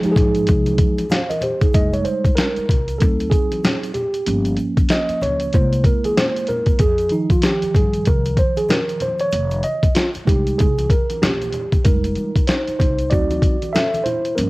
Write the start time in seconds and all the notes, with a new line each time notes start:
0.02 F3 G#3 D#4 G4, muted upright bass stroke, closed hi-hat, shaker
0.12 G#4
0.16 G#2, kick, closed hi-hat, high conga, low conga, shaker
0.35 closed hi-hat, shaker
0.47 C2, kick, closed hi-hat, shaker
0.66 closed hi-hat, high conga, shaker
0.78 kick, closed hi-hat, shaker
0.98 closed hi-hat, high conga, shaker
1.10 C5 F5, snare, closed hi-hat, low conga, shaker
1.29 A#4 D#5, closed hi-hat, high conga, shaker
1.41 G4 C5, closed hi-hat, low conga, shaker
1.61 D#4 G#4, kick, closed hi-hat, shaker
1.73 F1 G3 G#3 D#4 D#5, kick, closed hi-hat, shaker
1.93 C#5, closed hi-hat, shaker
2.05 C5, closed hi-hat, shaker
2.25 kick, closed hi-hat, shaker
2.36 A#4, snare, closed hi-hat, shaker
2.56 muted upright bass stroke, closed hi-hat, shaker
2.69 C2, kick, closed hi-hat, high conga, low conga, shaker
2.88 closed hi-hat, shaker
2.99 D2 F#3 C4 D#4 A4, kick, closed hi-hat, shaker
3.20 closed hi-hat, shaker
3.30 G#4, kick, closed hi-hat, shaker
3.52 closed hi-hat, high conga, shaker
3.64 snare, closed hi-hat, low conga, shaker
3.83 closed hi-hat, shaker
3.94 G4, closed hi-hat, low conga, shaker
4.14 closed hi-hat, shaker
4.26 G1 F3 A#3 C#4, closed hi-hat, shaker
4.45 closed hi-hat, shaker
4.57 closed hi-hat, shaker
4.77 kick, closed hi-hat, shaker
4.89 D#5, snare, closed hi-hat, shaker
5.09 muted upright bass stroke, closed hi-hat, shaker
5.21 C#2 C#5, closed hi-hat, high conga, low conga, shaker
5.40 closed hi-hat, shaker
5.53 C2 G#3 A#3 E4 C5, kick, closed hi-hat, shaker
5.73 closed hi-hat, shaker
5.84 A#4, kick, closed hi-hat, shaker
6.04 G#4, closed hi-hat, high conga, shaker
6.17 C5, snare, closed hi-hat, low conga, shaker
6.36 closed hi-hat, shaker
6.47 A#4, closed hi-hat, low conga, shaker
6.66 kick, closed hi-hat, shaker
6.79 F2 G#4, kick, closed hi-hat, shaker
6.98 closed hi-hat, shaker
7.09 D#3 F3 D#4, closed hi-hat, shaker
7.30 F4, kick, closed hi-hat, shaker
7.42 G4, snare, closed hi-hat, shaker
7.62 muted upright bass stroke, closed hi-hat, shaker
7.75 G2 G#4, kick, closed hi-hat, high conga, low conga, shaker
7.93 closed hi-hat, shaker
8.05 C2 A#4, kick, closed hi-hat, shaker
8.25 closed hi-hat, shaker
8.37 C5, kick, closed hi-hat, shaker
8.57 G#4, closed hi-hat, high conga, shaker
8.69 A#4, snare, closed hi-hat, low conga, shaker
8.89 closed hi-hat, shaker
9.00 C5, closed hi-hat, low conga, shaker
9.19 C#5, closed hi-hat, shaker
9.31 F1, closed hi-hat, shaker
9.51 closed hi-hat, shaker
9.63 D#5, closed hi-hat, high conga, shaker
9.83 kick, closed hi-hat, shaker
9.95 F4, snare, closed hi-hat, shaker
10.14 muted upright bass stroke, closed hi-hat, shaker
10.25 C2 G3 G#3 D#4 G4, kick, closed hi-hat, high conga, low conga, shaker
10.47 closed hi-hat, shaker
10.59 C2 G#4, kick, closed hi-hat, shaker
10.78 closed hi-hat, high conga, shaker
10.90 A#4, kick, closed hi-hat, shaker
11.10 closed hi-hat, high conga, shaker
11.22 A#1 G4, snare, closed hi-hat, low conga, shaker
11.42 closed hi-hat, high conga, shaker
11.52 closed hi-hat, low conga, shaker
11.72 kick, closed hi-hat, shaker
11.84 F1 G3 G#3 D#4 A#4, kick, closed hi-hat, shaker
12.04 closed hi-hat, shaker
12.15 closed hi-hat, high conga, shaker
12.36 kick, closed hi-hat, shaker
12.47 D#4 C5, snare, closed hi-hat, shaker
12.68 muted upright bass stroke, closed hi-hat, shaker
12.79 C2 D#4 C5, kick, closed hi-hat, low conga, shaker
12.99 closed hi-hat, shaker
13.10 D2 F#3 C4 D#4 F#4 D5, kick, closed hi-hat, shaker
13.31 closed hi-hat, high conga, shaker
13.42 kick, closed hi-hat, shaker
13.62 closed hi-hat, high conga, shaker
13.73 A4 E5, snare, closed hi-hat, low conga, shaker
13.94 closed hi-hat, high conga, shaker
14.04 E4 C5, closed hi-hat, low conga, shaker
14.25 closed hi-hat, shaker
14.35 G1 F3 A#3 C#4 A#4, closed hi-hat, shaker